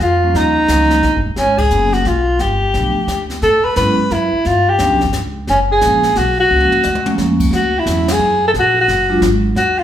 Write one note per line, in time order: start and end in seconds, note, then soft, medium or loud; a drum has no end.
0.00 0.33 F2 medium
0.00 0.38 F4 medium
0.00 snare soft
0.23 0.34 F3 medium
0.23 0.34 G3 soft
0.23 0.34 A#3 soft
0.23 0.34 C#4 medium
0.34 0.67 D#2 medium
0.34 1.26 D#4 medium
0.34 brush sweep soft
0.34 snare soft
0.68 1.02 C#2 medium
0.68 0.89 F3 medium
0.68 0.89 G3 soft
0.68 0.90 A#3 soft
0.68 0.90 C#4 medium
0.68 snare soft
0.68 hi-hat pedal medium
0.90 snare soft
1.03 1.15 A#1 medium
1.03 snare soft
1.15 1.26 G1 medium
1.26 1.37 D#1 medium
1.36 1.70 G#1 medium
1.36 1.61 C#4 medium
1.36 brush sweep soft
1.36 snare soft
1.58 1.95 G#4 medium
1.58 kick medium
1.58 ride medium
1.71 2.04 F#1 medium
1.71 1.91 F#3 medium
1.71 1.92 A#3 soft
1.71 1.91 B3 soft
1.71 1.92 C#4 medium
1.71 hi-hat pedal soft
1.93 2.09 F#4 medium
1.93 snare soft
2.05 2.38 B1 medium
2.05 2.42 F4 medium
2.05 snare soft
2.39 2.73 G1 medium
2.39 3.31 G4 medium
2.39 brush sweep soft
2.39 snare soft
2.74 2.95 B1 medium
2.74 2.94 F3 soft
2.74 2.94 A3 soft
2.74 2.94 B3 soft
2.74 2.94 D4 soft
2.74 snare soft
2.97 muted upright bass stroke soft
3.07 3.41 D2 medium
3.07 snare soft
3.07 hi-hat pedal medium
3.30 snare soft
3.42 3.63 A2 medium
3.42 3.66 A4 medium
3.42 brush sweep soft
3.42 snare soft
3.64 3.76 B4 medium
3.64 muted upright bass stroke soft
3.76 4.10 G#2 medium
3.76 3.96 F#3 soft
3.76 3.96 B3 soft
3.76 3.96 C#4 medium
3.76 3.96 E4 medium
3.76 4.14 B4 medium
3.76 snare medium
3.76 hi-hat pedal medium
4.10 4.31 F#2 medium
4.10 4.48 E4 medium
4.10 snare soft
4.34 muted upright bass stroke soft
4.45 4.79 G2 medium
4.45 4.71 F4 medium
4.45 brush sweep soft
4.45 snare soft
4.69 5.07 G4 medium
4.79 4.92 D2 medium
4.79 5.00 F3 soft
4.79 4.99 B3 soft
4.79 5.00 C#4 medium
4.79 4.99 D4 medium
4.79 snare soft
4.79 hi-hat pedal soft
4.92 5.03 B1 soft
5.01 5.13 G1 medium
5.01 snare soft
5.13 5.47 C#2 medium
5.13 snare soft
5.13 hi-hat pedal medium
5.47 5.81 F#1 medium
5.47 5.59 C#4 medium
5.47 brush sweep soft
5.47 snare soft
5.72 6.19 G#4 loud
5.81 6.15 A#1 medium
5.81 6.01 F3 soft
5.81 6.01 G#3 soft
5.81 6.02 A#3 soft
5.81 6.02 C#4 medium
5.81 snare medium
5.81 hi-hat pedal soft
6.03 snare soft
6.15 6.49 B1 medium
6.15 6.39 F#4 medium
6.15 snare soft
6.40 7.15 F#4 medium
6.50 6.71 C#2 medium
6.50 6.70 F3 soft
6.50 6.70 G#3 soft
6.50 6.70 A#3 soft
6.50 6.70 C#4 medium
6.60 floor tom soft
6.72 muted upright bass stroke soft
6.72 floor tom medium
6.83 7.17 D#2 medium
6.83 hi-hat pedal soft
6.83 high tom medium
6.95 high tom soft
7.05 7.49 F3 medium
7.05 7.49 G#3 medium
7.05 7.49 A#3 medium
7.05 7.50 C#4 medium
7.05 high tom medium
7.18 7.50 F2 medium
7.18 snare soft
7.40 kick medium
7.40 crash medium
7.51 7.84 D2 medium
7.51 brush sweep soft
7.51 snare soft
7.55 7.80 F#4 medium
7.79 8.13 E4 medium
7.86 8.19 E2 medium
7.86 8.06 F#3 medium
7.86 8.06 G#3 medium
7.86 8.06 C#4 medium
7.86 8.06 E4 medium
7.86 snare medium
7.86 hi-hat pedal medium
8.08 8.44 G#4 medium
8.08 snare medium
8.08 ride medium
8.19 8.53 F#2 medium
8.48 8.52 A4 medium
8.54 8.87 A#1 medium
8.54 brush sweep soft
8.54 snare soft
8.59 8.77 F#4 loud
8.81 9.22 F#4 medium
8.88 9.21 F#1 medium
8.88 snare soft
9.09 9.21 F#3 medium
9.09 9.21 G#3 medium
9.09 9.21 D4 medium
9.09 9.21 F4 medium
9.21 9.55 G#1 medium
9.21 snare medium
9.21 hi-hat pedal soft
9.55 9.84 D#2 medium
9.55 9.80 F#4 medium
9.55 brush sweep soft
9.55 snare soft
9.79 9.84 F4 medium